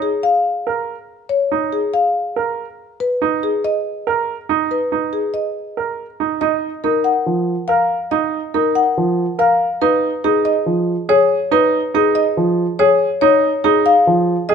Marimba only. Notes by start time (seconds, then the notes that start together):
0.02 G#4
0.23 F5
1.29 C#5
1.73 G#4
1.94 F5
3.00 B4
3.43 G#4
3.64 D#5
4.71 B4
5.13 G#4
5.34 D#5
6.41 D#5
6.84 A#4
7.04 F#5
7.68 F5
8.11 D#5
8.54 A#4
8.75 F#5
9.39 F5
9.82 B4
10.24 G#4
10.45 D#5
11.09 C#5
11.52 B4
11.95 G#4
12.15 D#5
12.79 C#5
13.21 C#5
13.64 G#4
13.86 F5
14.49 D#5